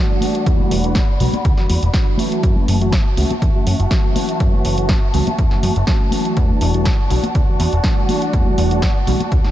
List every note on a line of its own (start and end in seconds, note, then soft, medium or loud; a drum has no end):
0.00 0.19 E3 medium
0.00 0.19 G3 medium
0.00 0.19 A3 medium
0.00 0.19 D4 medium
0.00 0.19 F#4 medium
0.00 2.15 F#4 medium
0.00 2.15 D5 medium
0.00 2.15 F#5 medium
0.00 0.45 A5 medium
0.21 0.44 E3 medium
0.21 0.44 G3 medium
0.21 0.44 A3 medium
0.21 0.44 D4 medium
0.21 0.44 F#4 medium
0.21 open hi-hat medium
0.21 tambourine medium
0.21 high conga medium
0.34 closed hi-hat medium
0.34 tambourine soft
0.46 0.59 E2 loud
0.46 0.81 E3 medium
0.46 0.81 G3 medium
0.46 0.81 A3 medium
0.46 0.81 D4 medium
0.46 0.81 F#4 loud
0.46 2.17 B5 medium
0.46 kick loud
0.46 closed hi-hat medium
0.59 0.69 E1 soft
0.59 tambourine soft
0.59 high conga medium
0.71 1.01 E1 medium
0.71 open hi-hat loud
0.71 tambourine medium
0.84 0.97 E3 medium
0.84 0.97 G3 medium
0.84 0.97 A3 medium
0.84 0.97 D4 medium
0.84 0.97 F#4 medium
0.84 closed hi-hat medium
0.95 kick loud
0.95 snare loud
0.95 closed hi-hat medium
0.95 tambourine medium
0.95 high conga medium
1.20 1.28 B1 loud
1.20 1.34 E3 medium
1.20 1.35 G3 medium
1.20 1.35 A3 medium
1.20 1.35 D4 medium
1.20 1.35 F#4 loud
1.20 open hi-hat medium
1.20 tambourine medium
1.33 closed hi-hat medium
1.33 tambourine soft
1.33 high conga medium
1.44 1.53 D2 medium
1.44 kick loud
1.44 closed hi-hat medium
1.44 tambourine medium
1.57 1.67 E2 soft
1.57 1.79 E3 medium
1.57 1.79 G3 medium
1.57 1.79 A3 medium
1.57 1.79 D4 medium
1.57 1.80 F#4 medium
1.57 snare soft
1.57 tambourine soft
1.69 1.78 E2 medium
1.69 open hi-hat loud
1.69 tambourine medium
1.69 high conga medium
1.83 1.90 E1 loud
1.83 closed hi-hat soft
1.83 tambourine soft
1.94 2.16 E3 medium
1.94 2.16 G3 medium
1.94 2.16 A3 medium
1.94 2.16 D4 medium
1.94 2.16 F#4 loud
1.94 kick loud
1.94 snare loud
1.94 closed hi-hat medium
1.94 tambourine soft
2.18 2.40 E3 medium
2.18 2.41 F#3 medium
2.18 2.41 A3 medium
2.18 2.41 C#4 medium
2.18 6.33 F#4 medium
2.18 2.41 F#4 medium
2.18 6.33 E5 medium
2.18 9.51 A5 medium
2.18 open hi-hat medium
2.18 tambourine medium
2.18 high conga loud
2.32 closed hi-hat soft
2.32 tambourine soft
2.43 2.59 F#2 loud
2.43 2.78 E3 medium
2.43 2.78 F#3 medium
2.43 2.78 A3 medium
2.43 2.78 C#4 medium
2.43 2.78 F#4 loud
2.43 kick loud
2.43 closed hi-hat medium
2.56 tambourine soft
2.56 high conga medium
2.68 2.98 F#1 medium
2.68 open hi-hat loud
2.68 tambourine medium
2.81 2.94 E3 medium
2.81 2.94 F#3 medium
2.81 2.94 A3 medium
2.81 2.94 C#4 medium
2.81 2.94 F#4 medium
2.81 closed hi-hat medium
2.92 kick loud
2.92 snare loud
2.92 closed hi-hat medium
2.92 tambourine soft
2.92 high conga medium
3.17 3.25 C#2 loud
3.17 3.31 E3 medium
3.17 3.31 F#3 medium
3.17 3.31 A3 medium
3.17 3.31 C#4 medium
3.17 3.32 F#4 loud
3.17 open hi-hat medium
3.30 closed hi-hat medium
3.30 tambourine soft
3.30 high conga loud
3.42 3.50 E2 medium
3.42 kick loud
3.42 closed hi-hat medium
3.42 tambourine medium
3.55 3.64 F#2 soft
3.55 3.76 E3 medium
3.55 3.76 F#3 medium
3.55 3.76 A3 medium
3.55 3.76 C#4 medium
3.55 3.76 F#4 medium
3.55 tambourine soft
3.67 3.75 F#2 medium
3.67 open hi-hat loud
3.67 tambourine medium
3.67 high conga medium
3.79 3.87 F#1 medium
3.79 closed hi-hat soft
3.79 tambourine soft
3.91 4.13 E3 medium
3.91 4.13 F#3 medium
3.91 4.13 A3 medium
3.91 4.13 C#4 medium
3.91 4.13 F#4 medium
3.91 kick loud
3.91 snare loud
3.91 closed hi-hat medium
4.15 4.37 E3 medium
4.15 4.37 F#3 medium
4.15 4.38 A3 medium
4.15 4.38 C#4 medium
4.15 4.38 F#4 medium
4.15 open hi-hat loud
4.15 tambourine medium
4.15 high conga loud
4.28 closed hi-hat soft
4.28 tambourine soft
4.40 4.53 F#2 loud
4.40 4.75 E3 medium
4.40 4.75 F#3 medium
4.40 4.75 A3 medium
4.40 4.75 C#4 medium
4.40 4.75 F#4 loud
4.40 kick loud
4.40 closed hi-hat medium
4.53 4.63 F#1 soft
4.53 tambourine soft
4.53 high conga medium
4.65 4.95 F#1 medium
4.65 open hi-hat loud
4.65 tambourine medium
4.78 4.90 E3 medium
4.78 4.91 F#3 medium
4.78 4.91 A3 medium
4.78 4.91 C#4 medium
4.78 4.91 F#4 medium
4.78 closed hi-hat soft
4.89 kick loud
4.89 snare loud
4.89 closed hi-hat medium
4.89 tambourine soft
4.89 high conga medium
5.14 5.22 C#2 medium
5.14 5.28 E3 medium
5.14 5.28 F#3 medium
5.14 5.28 A3 medium
5.14 5.28 C#4 medium
5.14 5.28 F#4 loud
5.14 open hi-hat medium
5.27 closed hi-hat soft
5.27 tambourine soft
5.27 high conga medium
5.38 5.46 E2 medium
5.38 kick loud
5.38 closed hi-hat medium
5.38 tambourine soft
5.38 low conga medium
5.51 5.61 F#2 soft
5.51 5.72 E3 medium
5.51 5.73 F#3 medium
5.51 5.73 A3 medium
5.51 5.73 C#4 medium
5.51 5.73 F#4 medium
5.51 snare soft
5.51 tambourine soft
5.63 5.71 F#2 medium
5.63 open hi-hat loud
5.63 tambourine medium
5.63 high conga medium
5.76 5.83 F#1 medium
5.76 closed hi-hat soft
5.87 6.09 E3 medium
5.87 6.10 F#3 medium
5.87 6.10 A3 medium
5.87 6.10 C#4 medium
5.87 6.10 F#4 loud
5.87 kick loud
5.87 snare loud
5.87 closed hi-hat medium
6.11 6.34 E3 medium
6.11 6.34 F#3 medium
6.11 6.34 A3 medium
6.11 6.34 C#4 medium
6.11 6.34 F#4 medium
6.11 open hi-hat loud
6.11 tambourine medium
6.11 high conga medium
6.25 closed hi-hat soft
6.25 tambourine soft
6.36 6.53 E2 loud
6.36 6.71 E3 loud
6.36 6.71 G3 medium
6.36 6.71 A3 medium
6.36 6.71 D4 medium
6.36 6.71 F#4 loud
6.36 9.51 F#4 medium
6.36 9.51 D5 medium
6.36 9.51 F#5 medium
6.36 kick loud
6.36 closed hi-hat medium
6.36 tambourine soft
6.49 tambourine soft
6.49 high conga medium
6.61 6.91 E1 medium
6.61 open hi-hat loud
6.74 6.87 E3 medium
6.74 6.87 G3 medium
6.74 6.87 A3 medium
6.74 6.87 D4 medium
6.74 6.87 F#4 medium
6.74 closed hi-hat medium
6.85 kick loud
6.85 snare loud
6.85 closed hi-hat medium
6.85 tambourine soft
6.85 high conga medium
7.10 7.19 B1 loud
7.10 7.24 E3 medium
7.10 7.25 G3 medium
7.10 7.25 A3 medium
7.10 7.25 D4 medium
7.10 7.25 F#4 loud
7.10 open hi-hat medium
7.10 tambourine medium
7.23 closed hi-hat soft
7.23 tambourine soft
7.23 high conga medium
7.35 7.43 D2 medium
7.35 kick loud
7.35 closed hi-hat medium
7.35 tambourine soft
7.47 7.58 E2 soft
7.47 7.69 E3 medium
7.47 7.69 G3 medium
7.47 7.69 A3 medium
7.47 7.70 D4 medium
7.47 7.70 F#4 medium
7.47 tambourine soft
7.59 7.68 E2 medium
7.59 open hi-hat loud
7.59 tambourine medium
7.59 high conga medium
7.73 7.80 E1 medium
7.73 closed hi-hat soft
7.84 8.06 E3 medium
7.84 8.06 G3 medium
7.84 8.06 A3 medium
7.84 8.06 D4 medium
7.84 8.06 F#4 medium
7.84 kick loud
7.84 snare loud
7.84 closed hi-hat medium
7.84 tambourine soft
8.09 8.31 E3 medium
8.09 8.31 G3 medium
8.09 8.31 A3 medium
8.09 8.31 D4 medium
8.09 8.31 F#4 medium
8.09 open hi-hat medium
8.09 tambourine medium
8.09 high conga medium
8.22 closed hi-hat soft
8.33 8.46 E2 loud
8.33 8.68 E3 medium
8.33 8.68 G3 medium
8.33 8.68 A3 medium
8.33 8.68 D4 medium
8.33 8.68 F#4 loud
8.33 kick loud
8.33 closed hi-hat medium
8.47 8.56 E1 soft
8.47 tambourine soft
8.47 high conga medium
8.58 8.88 E1 medium
8.58 open hi-hat loud
8.71 8.84 E3 medium
8.71 8.84 G3 medium
8.71 8.84 A3 medium
8.71 8.84 D4 medium
8.71 8.84 F#4 medium
8.71 closed hi-hat medium
8.82 kick loud
8.82 snare loud
8.82 closed hi-hat medium
8.82 tambourine medium
8.82 high conga medium
9.07 9.15 B1 loud
9.07 9.21 E3 medium
9.07 9.21 G3 medium
9.07 9.22 A3 medium
9.07 9.22 D4 medium
9.07 9.22 F#4 loud
9.07 open hi-hat medium
9.20 closed hi-hat medium
9.20 tambourine soft
9.20 high conga medium
9.32 9.40 D2 medium
9.32 kick loud
9.32 closed hi-hat medium
9.44 9.51 E2 soft
9.44 9.51 E3 medium
9.44 9.51 G3 medium
9.44 9.51 A3 medium
9.44 9.51 D4 medium
9.44 9.51 F#4 medium
9.44 snare soft
9.44 tambourine soft